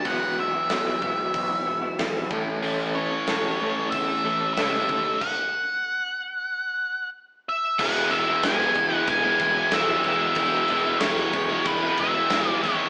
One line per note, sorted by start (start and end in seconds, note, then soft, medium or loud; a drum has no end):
0.04 0.47 E1 medium
0.04 0.68 E2 medium
0.04 0.69 B2 medium
0.04 2.31 E3 medium
0.04 0.38 E3 medium
0.04 2.30 F#3 medium
0.04 2.30 B3 medium
0.04 0.38 B3 medium
0.04 0.39 E4 loud
0.04 2.30 F#4 medium
0.04 0.39 F#4 loud
0.04 0.40 F#5 loud
0.04 kick loud
0.04 open hi-hat medium
0.39 0.55 E3 medium
0.39 0.54 B3 medium
0.39 0.54 E4 medium
0.39 0.53 F#4 medium
0.39 2.29 E5 medium
0.54 0.70 E3 medium
0.54 0.70 B3 medium
0.54 0.71 E4 medium
0.54 0.71 F#4 medium
0.69 0.91 B1 medium
0.69 1.35 E2 medium
0.69 1.35 B2 medium
0.69 1.01 E3 medium
0.69 1.01 B3 loud
0.69 1.03 E4 loud
0.69 1.03 F#4 loud
0.69 snare loud
0.69 open hi-hat medium
1.02 1.23 E1 medium
1.02 1.20 E3 medium
1.02 1.19 B3 medium
1.02 1.18 E4 medium
1.02 1.17 F#4 medium
1.02 kick medium
1.18 1.52 E3 medium
1.18 1.51 B3 medium
1.18 1.51 E4 medium
1.18 1.49 F#4 medium
1.34 1.55 B1 medium
1.34 kick loud
1.34 open hi-hat medium
1.51 1.65 E3 medium
1.51 1.65 B3 medium
1.51 1.66 E4 medium
1.51 1.66 F#4 medium
1.65 1.88 E1 medium
1.65 1.83 E3 medium
1.65 1.82 B3 medium
1.65 1.82 E4 medium
1.65 1.80 F#4 medium
1.82 1.98 E3 medium
1.82 1.98 B3 medium
1.82 1.98 E4 medium
1.82 1.99 F#4 medium
1.98 2.31 G#1 medium
1.98 2.29 E2 medium
1.98 2.29 B2 medium
1.98 2.15 E3 loud
1.98 2.13 B3 medium
1.98 2.14 E4 medium
1.98 2.12 F#4 medium
1.98 snare loud
1.98 open hi-hat soft
2.14 2.29 E3 medium
2.14 2.29 B3 medium
2.14 2.30 E4 medium
2.14 2.29 F#4 medium
2.29 2.52 A1 medium
2.29 2.61 A2 medium
2.29 4.55 A2 medium
2.29 2.61 E3 loud
2.29 4.55 E3 medium
2.29 2.62 A3 loud
2.29 4.56 A3 medium
2.29 2.62 C#4 loud
2.29 4.56 C#4 loud
2.29 2.63 A4 loud
2.29 kick loud
2.33 4.56 E4 loud
2.62 3.06 A1 medium
2.62 3.26 A2 medium
2.62 4.23 A2 medium
2.62 2.93 E3 medium
2.62 4.23 E3 medium
2.62 2.94 A3 medium
2.62 4.23 A3 loud
2.62 2.95 C#4 medium
2.62 2.96 A4 loud
2.62 open hi-hat soft
2.94 3.27 E3 medium
2.94 3.12 A3 medium
2.94 3.11 C#4 medium
2.94 3.09 A4 medium
2.94 3.90 C#5 medium
3.11 3.27 A3 medium
3.11 3.28 C#4 medium
3.11 3.28 A4 medium
3.27 3.50 E1 medium
3.27 3.93 A2 loud
3.27 3.58 E3 loud
3.27 3.59 A3 medium
3.27 3.59 C#4 loud
3.27 3.60 A4 loud
3.27 snare loud
3.27 open hi-hat medium
3.59 3.82 A1 medium
3.59 4.09 E3 medium
3.59 3.77 A3 medium
3.59 3.76 C#4 medium
3.59 3.75 A4 medium
3.76 4.08 A3 medium
3.76 4.07 C#4 medium
3.76 4.06 A4 medium
3.91 4.13 E2 medium
3.91 4.53 E5 medium
3.91 kick loud
3.91 open hi-hat medium
4.08 4.23 A3 medium
4.08 4.24 C#4 medium
4.08 4.24 A4 medium
4.24 4.46 A1 medium
4.24 4.55 A2 medium
4.24 4.57 E3 medium
4.24 4.56 E3 medium
4.24 4.41 A3 medium
4.24 4.55 A3 medium
4.24 4.40 C#4 medium
4.24 4.39 A4 medium
4.40 4.57 A3 medium
4.40 4.57 C#4 medium
4.40 4.57 A4 medium
4.54 5.05 A2 medium
4.54 4.88 A2 medium
4.54 4.88 E3 medium
4.54 5.06 E3 medium
4.54 4.73 A3 medium
4.54 5.22 E5 medium
4.54 snare loud
4.54 open hi-hat medium
4.58 4.78 C#2 medium
4.58 4.88 A3 medium
4.58 4.73 C#4 loud
4.58 4.89 C#4 medium
4.58 4.89 E4 medium
4.58 4.71 A4 loud
4.73 4.89 A3 medium
4.73 4.89 C#4 medium
4.73 4.90 A4 medium
4.89 5.10 D#2 medium
4.89 5.20 A3 medium
4.89 5.20 C#4 medium
4.89 5.21 A4 medium
4.89 kick medium
5.18 7.09 F#5 medium
5.18 kick loud
5.18 crash medium
7.49 7.81 E5 medium
7.79 8.00 E1 medium
7.79 8.10 E3 medium
7.79 8.11 G#3 medium
7.79 8.12 B3 medium
7.79 8.12 E4 loud
7.79 8.13 F#5 medium
7.79 kick loud
7.79 crash loud
7.79 crash medium
8.11 8.32 E1 medium
8.11 8.43 E3 medium
8.11 8.30 G#3 medium
8.11 8.28 B3 medium
8.11 8.28 E4 medium
8.11 8.44 E5 medium
8.11 crash medium
8.28 8.43 G#3 medium
8.28 8.44 B3 medium
8.28 8.45 E4 medium
8.43 8.65 E1 medium
8.43 8.76 E3 medium
8.43 8.77 G#3 loud
8.43 8.77 B3 loud
8.43 8.77 E4 medium
8.43 8.95 G#5 loud
8.43 snare loud
8.43 crash medium
8.59 8.75 G#3 medium
8.59 8.75 B3 medium
8.59 8.76 E4 medium
8.59 snare soft
8.75 8.97 E1 medium
8.75 9.40 E3 medium
8.75 8.93 G#3 medium
8.75 8.93 B3 medium
8.75 8.92 E4 medium
8.75 muted distorted electric guitar stroke soft
8.75 kick medium
8.75 crash medium
8.92 9.25 G#3 medium
8.92 9.25 B3 medium
8.92 9.24 E4 medium
8.92 9.09 F#5 loud
9.07 9.29 E1 loud
9.07 9.75 G#5 loud
9.07 kick loud
9.07 crash medium
9.24 9.40 G#3 medium
9.24 9.42 B3 medium
9.24 9.42 E4 medium
9.39 9.61 E1 medium
9.39 9.72 E3 medium
9.39 9.58 G#3 medium
9.39 9.58 B3 medium
9.39 9.57 E4 medium
9.39 kick medium
9.39 crash medium
9.57 9.71 G#3 medium
9.57 9.73 B3 medium
9.57 9.73 E4 medium
9.71 9.94 E1 medium
9.71 10.05 E3 medium
9.71 9.90 G#3 medium
9.71 9.90 B3 medium
9.71 9.89 E4 loud
9.71 10.05 E5 medium
9.71 snare loud
9.71 crash medium
9.89 10.05 G#3 medium
9.89 10.07 B3 medium
9.89 10.08 E4 medium
10.04 10.26 E1 medium
10.04 10.36 E3 medium
10.04 10.37 G#3 medium
10.04 10.38 B3 medium
10.04 10.98 E5 loud
10.04 crash medium
10.08 10.39 E4 medium
10.20 10.34 G#3 medium
10.20 10.36 B3 medium
10.20 10.37 E4 medium
10.35 10.58 E1 loud
10.35 10.69 E3 medium
10.35 10.69 G#3 medium
10.35 10.70 B3 loud
10.35 10.71 E4 medium
10.35 kick loud
10.35 crash medium
10.68 10.91 E1 loud
10.68 11.02 E3 medium
10.68 10.87 G#3 medium
10.68 10.86 B3 medium
10.68 10.85 E4 medium
10.68 crash medium
10.85 11.02 G#3 medium
10.85 11.04 B3 medium
10.85 11.04 E4 medium
11.00 11.23 E1 medium
11.00 11.34 E3 medium
11.00 11.34 G#3 medium
11.00 11.67 C#5 medium
11.00 snare loud
11.00 crash medium
11.04 11.35 B3 loud
11.04 11.36 E4 loud
11.17 11.33 G#3 medium
11.17 11.34 B3 medium
11.17 11.35 E4 medium
11.17 snare soft
11.33 11.55 E1 medium
11.33 11.99 E3 medium
11.33 11.51 G#3 medium
11.33 11.51 B3 medium
11.33 11.50 E4 medium
11.33 muted distorted electric guitar stroke medium
11.33 kick medium
11.33 crash medium
11.50 11.85 G#3 medium
11.50 11.84 B3 medium
11.50 11.83 E4 medium
11.65 11.87 E1 medium
11.65 11.99 B4 medium
11.65 kick loud
11.65 crash medium
11.83 12.00 G#3 medium
11.83 12.01 B3 medium
11.83 12.01 E4 medium
11.97 12.19 E1 medium
11.97 12.30 E3 medium
11.97 12.16 G#3 medium
11.97 12.49 E5 loud
11.97 kick medium
11.97 crash medium
12.02 12.16 B3 medium
12.02 12.15 E4 medium
12.16 12.31 G#3 medium
12.16 12.32 B3 medium
12.16 12.33 E4 medium
12.30 12.52 E1 medium
12.30 12.63 E3 medium
12.30 12.48 G#3 medium
12.30 12.49 B3 medium
12.30 12.47 E4 loud
12.30 snare loud
12.30 crash medium
12.48 12.63 G#3 medium
12.48 12.64 B3 medium
12.48 12.65 E4 medium
12.48 12.62 D5 loud
12.63 12.84 G#1 medium
12.63 12.89 E3 medium
12.63 12.89 G#3 medium
12.63 12.89 B3 medium
12.63 12.89 E4 medium
12.63 12.89 C#5 medium
12.63 snare soft
12.63 crash medium
12.77 12.89 G#3 medium
12.77 12.89 B3 medium
12.77 12.89 E4 medium